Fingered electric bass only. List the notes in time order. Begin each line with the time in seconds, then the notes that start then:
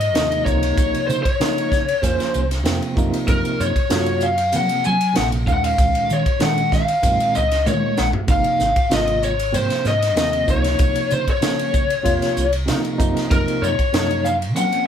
Already playing: G#2
0.15 D#2
0.46 C#2
0.77 C2
1.09 C#3
1.40 C#3
2.03 F2
2.35 C2
2.66 F2
2.97 F#2
3.28 F#2
3.60 F#2
3.76 muted fingered electric bass stroke
3.92 F#2
4.55 F#3
4.87 F#3
5.17 A#1
5.47 D#2
5.79 C#2
6.11 D#3
6.42 D#3
7.04 F#2
7.36 C#2
7.67 D#3
7.99 A#1
8.28 G#1
8.60 G#1
8.92 G#1
9.54 G#2
9.85 G#2
10.16 D#2
10.48 C#2
10.80 C2
11.12 C#3
11.42 C#3
12.05 F2
12.37 C2
12.68 C#3
13.00 F#2
13.31 F#2
13.62 F#2
13.94 F#2
14.56 F#3